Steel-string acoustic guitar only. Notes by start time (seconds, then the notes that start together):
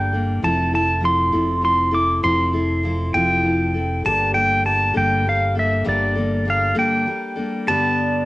Already playing: G3 A#3 D4 A4
0.12 G3 A#3 D4 A4
0.42 F3 C4 E4 A4
0.72 C4 E4 A4
1.01 F3 C4 E4 A4
1.32 F3 C4 E4 A4
1.61 F3 C4 E4 A4
1.91 C4 E4 A4
2.23 F3 C4 E4 A4
2.53 C4 E4 A4
2.83 F3 C4 E4 A4
3.14 F3 C4 E4 A4
3.43 F3 C4 E4 A4
3.74 C4 E4 A4
4.05 G2 D3 G3 A#3 D4 A4
4.33 G3 A#3 D4 A4
4.64 G3 A#3 D4 A4
4.94 G2 D3 G3 A#3 D4 A4
5.25 G3 A#3 D4 A4
5.55 G3 A#3 D4 A4
5.84 G2 D3 G3 A#3 D4 A4
6.15 G3 A#3 D4 A4
6.45 G3 A#3 D4 A4
6.75 G2 D3 G3 A#3 D4 A4
7.06 G3 A#3 D4 A4
7.36 G3 A#3 D4 A4
7.67 G2 D3 G3 B3 D4 B4